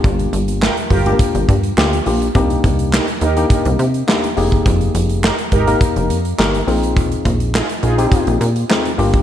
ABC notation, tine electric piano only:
X:1
M:4/4
L:1/16
Q:1/4=104
K:Bbmix
V:1 name="Tine electric piano"
[B,DFG]4 z3 [A,B,DFG]3 z2 [B,DFG] z [B,DFG] z | [B,DEG]4- [B,DEG] z2 [B,DEG]3 z2 [B,DEG] z [B,EGA]2- | [B,EGA]4 z3 [B,EGB]3 z2 [B,EGB] z [CEFA]2- | [CEFA]4 z3 [CEFG]3 z2 [CEFA] z [B,DFG]2 |]